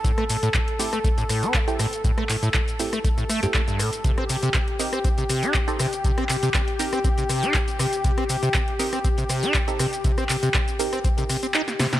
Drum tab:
HH |xxoxxxoxxxoxxxox|xxoxxxoxxxoxxxox|xxoxxxoxxxoxxxox|xxoxxxoxxxoxxxox|
SH |x-xxx-xxxxxxxxxx|x-xxxxxxxxxxxxxx|x-xxx-xxxxxxxxxx|x-xxx-xxxxxxxxxx|
CP |----x-------x---|--x-x-------x---|----x-------x---|--x-x-------x---|
SD |-r--r--r--r---r-|-r--r--r--r---r-|-r--r--r--r---r-|-r--r--r--r---r-|
BD |o---o---o---o---|o---o---o---o---|o---o---o---o---|o---o---o---o---|

HH |xxoxxxoxxxoxxxox|xxoxxxoxxxoxxxox|
SH |x-xxx-xxxxxxxxxx|xxxxxxxxxxxxxxxx|
CP |----x-------x---|--x-x-------x---|
SD |-r--r--r--r---r-|-r--r--r--r--ooo|
BD |o---o---o---o---|o---o---o-------|